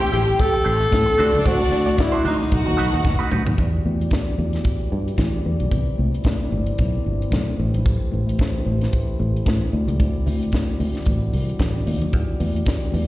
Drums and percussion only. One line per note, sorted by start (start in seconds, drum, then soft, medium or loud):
0.11 open hi-hat medium
0.11 muted conga soft
0.11 high conga medium
0.11 low conga medium
0.28 closed hi-hat soft
0.39 kick loud
0.39 closed hi-hat medium
0.39 muted conga soft
0.67 open hi-hat medium
0.83 closed hi-hat soft
0.91 kick loud
0.91 snare loud
0.91 closed hi-hat medium
0.91 muted conga soft
0.91 high conga medium
1.20 open hi-hat medium
1.34 closed hi-hat medium
1.34 low conga loud
1.46 kick loud
1.46 closed hi-hat medium
1.46 muted conga soft
1.72 open hi-hat medium
1.72 muted conga soft
1.72 high conga medium
1.87 closed hi-hat soft
1.87 high conga medium
1.97 kick loud
1.97 snare loud
1.97 closed hi-hat medium
1.97 muted conga soft
1.97 high conga medium
2.24 open hi-hat medium
2.24 muted conga soft
2.24 high conga medium
2.24 low conga medium
2.40 snare soft
2.40 closed hi-hat soft
2.52 kick loud
2.52 closed hi-hat medium
2.78 open hi-hat medium
2.78 muted conga soft
2.95 closed hi-hat soft
3.04 kick loud
3.04 snare medium
3.04 muted conga soft
3.04 high conga medium
3.32 mid tom loud
3.32 muted conga soft
3.32 low conga medium
3.47 floor tom loud
3.47 low conga medium
3.58 kick loud
3.58 closed hi-hat medium
3.58 muted conga soft
3.85 high conga medium
4.00 closed hi-hat soft
4.00 high conga medium
4.11 kick loud
4.11 snare loud
4.11 closed hi-hat soft
4.11 high conga medium
4.38 high conga medium
4.38 low conga medium
4.53 snare soft
4.53 closed hi-hat soft
4.64 kick loud
4.64 closed hi-hat medium
5.08 closed hi-hat soft
5.17 kick medium
5.17 snare medium
5.17 closed hi-hat medium
5.17 muted conga soft
5.17 high conga medium
5.45 high conga soft
5.60 closed hi-hat soft
5.60 low conga medium
5.71 kick loud
5.71 closed hi-hat medium
5.71 muted conga soft
5.98 muted conga soft
5.98 high conga medium
6.12 closed hi-hat soft
6.12 high conga medium
6.24 kick loud
6.24 snare loud
6.24 closed hi-hat soft
6.24 high conga medium
6.50 muted conga soft
6.50 high conga medium
6.50 low conga medium
6.67 closed hi-hat soft
6.78 kick loud
6.78 closed hi-hat medium
6.78 muted conga soft
7.05 muted conga soft
7.22 closed hi-hat soft
7.30 kick medium
7.30 snare loud
7.30 closed hi-hat medium
7.30 high conga medium
7.59 high conga medium
7.74 closed hi-hat soft
7.74 low conga medium
7.86 kick loud
7.86 closed hi-hat medium
8.12 muted conga soft
8.12 high conga medium
8.26 closed hi-hat soft
8.26 high conga medium
8.38 kick medium
8.38 snare medium
8.38 closed hi-hat soft
8.38 high conga medium
8.65 muted conga soft
8.65 high conga medium
8.65 low conga medium
8.81 snare soft
8.81 closed hi-hat soft
8.93 kick loud
8.93 closed hi-hat medium
8.93 muted conga soft
9.19 muted conga soft
9.36 closed hi-hat soft
9.45 kick loud
9.45 snare loud
9.45 closed hi-hat medium
9.45 muted conga soft
9.45 high conga medium
9.73 muted conga soft
9.73 high conga medium
9.88 closed hi-hat soft
9.88 low conga medium
10.00 kick loud
10.00 closed hi-hat medium
10.00 muted conga soft
10.26 open hi-hat medium
10.26 muted conga soft
10.26 high conga medium
10.40 closed hi-hat soft
10.40 high conga medium
10.52 kick loud
10.52 snare loud
10.52 closed hi-hat soft
10.52 muted conga soft
10.52 high conga medium
10.79 open hi-hat medium
10.79 muted conga soft
10.79 high conga medium
10.79 low conga medium
10.94 snare soft
10.94 closed hi-hat soft
11.06 kick loud
11.06 closed hi-hat medium
11.06 muted conga soft
11.33 open hi-hat medium
11.33 muted conga soft
11.49 closed hi-hat soft
11.59 kick loud
11.59 snare loud
11.59 closed hi-hat medium
11.59 high conga medium
11.87 open hi-hat medium
11.87 high conga soft
12.02 closed hi-hat soft
12.02 low conga medium
12.13 kick loud
12.13 closed hi-hat medium
12.13 muted conga soft
12.40 open hi-hat medium
12.40 muted conga soft
12.40 high conga medium
12.54 closed hi-hat soft
12.54 high conga medium
12.65 kick loud
12.65 snare medium
12.65 closed hi-hat soft
12.65 high conga medium
12.92 open hi-hat medium
12.92 muted conga soft
12.92 high conga medium
12.92 low conga medium